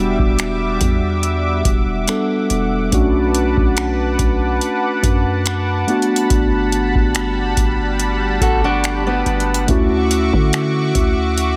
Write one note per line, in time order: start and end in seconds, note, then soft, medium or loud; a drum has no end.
0.00 0.17 E1 loud
0.00 2.07 G3 medium
0.00 2.89 G3 medium
0.00 2.04 B3 medium
0.00 2.04 D4 medium
0.00 2.05 F#4 medium
0.00 2.89 E5 medium
0.00 9.64 F#5 medium
0.00 5.84 D6 medium
0.19 0.78 E1 loud
0.19 kick medium
0.39 finger snap loud
0.39 closed hi-hat medium
0.81 1.62 E2 loud
0.81 kick medium
0.81 closed hi-hat medium
1.23 closed hi-hat medium
1.65 2.06 E1 medium
1.65 kick medium
1.65 closed hi-hat medium
2.08 2.92 G3 medium
2.08 2.93 B3 medium
2.08 2.92 D4 medium
2.08 2.93 A4 medium
2.08 finger snap loud
2.08 closed hi-hat medium
2.50 2.91 E1 loud
2.50 closed hi-hat medium
2.91 3.55 B1 loud
2.91 5.83 A3 medium
2.91 5.84 C#4 medium
2.91 5.85 D4 medium
2.91 5.85 F#4 medium
2.91 5.85 B4 medium
2.91 9.64 A5 medium
2.91 kick loud
2.91 closed hi-hat medium
3.35 closed hi-hat medium
3.57 4.17 B1 medium
3.57 kick medium
3.77 finger snap loud
3.77 closed hi-hat medium
4.19 4.60 B1 medium
4.19 kick medium
4.19 closed hi-hat medium
4.61 closed hi-hat medium
5.03 5.84 F#2 medium
5.03 kick medium
5.03 closed hi-hat medium
5.46 finger snap loud
5.46 closed hi-hat medium
5.87 9.65 G3 medium
5.87 9.22 A3 medium
5.87 9.22 B3 medium
5.87 9.23 D4 medium
5.87 9.23 F#4 medium
5.87 9.65 B5 medium
5.87 closed hi-hat soft
6.02 closed hi-hat medium
6.16 closed hi-hat medium
6.30 6.93 G1 loud
6.30 kick loud
6.30 closed hi-hat medium
6.72 closed hi-hat medium
6.95 7.55 G1 medium
6.95 kick medium
7.15 finger snap loud
7.15 closed hi-hat medium
7.57 8.38 G1 loud
7.57 kick medium
7.57 closed hi-hat medium
8.00 closed hi-hat medium
8.41 9.22 G1 loud
8.41 8.63 F#4 medium
8.41 8.63 A4 medium
8.41 kick loud
8.41 closed hi-hat medium
8.64 9.05 D4 medium
8.64 9.04 F#4 medium
8.84 finger snap loud
8.84 closed hi-hat medium
9.07 9.66 B3 medium
9.07 9.65 D4 medium
9.26 9.67 G1 loud
9.26 closed hi-hat soft
9.40 closed hi-hat medium
9.54 closed hi-hat medium
9.67 10.31 D2 loud
9.67 11.56 A3 medium
9.67 11.56 C#4 medium
9.67 11.56 E4 medium
9.67 11.56 F#4 medium
9.67 11.56 E5 medium
9.67 11.56 C#6 medium
9.67 11.56 D6 medium
9.67 kick loud
9.67 closed hi-hat medium
10.11 closed hi-hat medium
10.33 10.93 D3 loud
10.33 kick medium
10.53 finger snap loud
10.53 closed hi-hat medium
10.95 11.56 D2 loud
10.95 kick medium
10.95 closed hi-hat medium
11.38 closed hi-hat medium